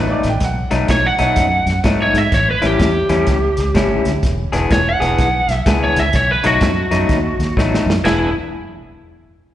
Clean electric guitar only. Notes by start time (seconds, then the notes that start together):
Already playing: B2 F#3 A3 D#4
0.71 B2 F#3 A3 D#4
1.19 B2 F#3 A3 D#4
1.84 B2 F#3 A3 D#4
2.62 A2 G3 C#4 E4
3.09 A2 G3 C#4 E4
3.75 A2 G3 C#4 E4
4.52 E3 B3 D4 G#4
5.00 E3 B3 D4 G#4
5.66 E3 B3 D4 G#4
6.44 B2 F#3 A3 D#4
6.91 B2 F#3 A3 D#4
7.57 B2 F#3 A3 D#4
8.04 E3 B3 D4 G#4